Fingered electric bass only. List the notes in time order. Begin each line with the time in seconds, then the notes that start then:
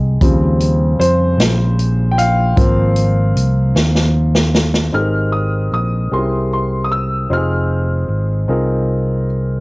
Already playing: C2
0.21 D#2
0.99 F2
1.38 A#1
2.57 G#1
3.36 C2
3.75 D#2
4.93 G#1
5.72 A#1
6.12 C2
7.30 F1
8.08 G#1
8.48 C2